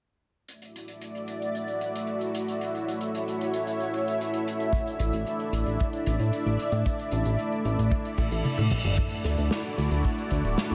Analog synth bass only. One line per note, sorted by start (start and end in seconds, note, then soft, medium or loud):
5.00 5.12 A1 medium
5.13 5.25 A1 medium
5.53 5.65 A1 medium
5.66 5.78 A1 medium
6.07 6.18 A1 medium
6.19 6.31 A2 medium
6.46 6.58 A1 medium
6.72 6.84 A2 medium
7.12 7.24 A1 medium
7.25 7.37 A1 medium
7.65 7.77 A1 medium
7.79 7.90 A1 medium
8.18 8.30 A1 medium
8.32 8.43 A1 medium
8.58 8.70 A2 medium
8.85 8.97 G1 medium
9.25 9.36 D2 loud
9.38 9.50 D2 medium
9.78 9.90 D2 medium
9.91 10.03 D2 medium
10.31 10.43 D2 medium
10.45 10.56 D1 medium
10.71 10.75 D2 medium